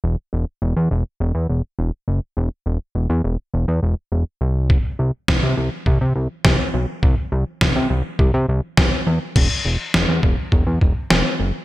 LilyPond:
<<
  \new Staff \with { instrumentName = "Analog synth bass" } { \clef bass \time 4/4 \key c \lydian \tempo 4 = 103 e,,16 r16 e,,16 r16 e,,16 e,16 e,,16 r16 e,,16 e,16 e,,16 r16 e,,16 r16 fis,,16 r16 | e,,16 r16 e,,16 r16 e,,16 e,16 e,,16 r16 e,,16 e,16 e,,16 r16 e,,16 r16 c,8~ | c,16 r16 c,16 r16 c,16 c16 c,16 r16 c,16 c16 c,16 r16 c,16 r16 b,,16 r16 | c,16 r16 c,16 r16 c,16 c16 c,16 r16 c,16 c16 c,16 r16 c,16 r16 e,16 r16 |
e,,16 r16 e,,16 r16 e,,16 e,16 e,,16 r16 e,,16 e,16 e,,16 r16 e,,16 r16 fis,,16 r16 | }
  \new DrumStaff \with { instrumentName = "Drums" } \drummode { \time 4/4 r4 r4 r4 r4 | r4 r4 r4 r4 | bd4 <bd sn>4 bd4 <bd sn>4 | bd4 <bd sn>4 bd4 <bd sn>4 |
<cymc bd>4 sn8 bd8 bd8 bd8 sn4 | }
>>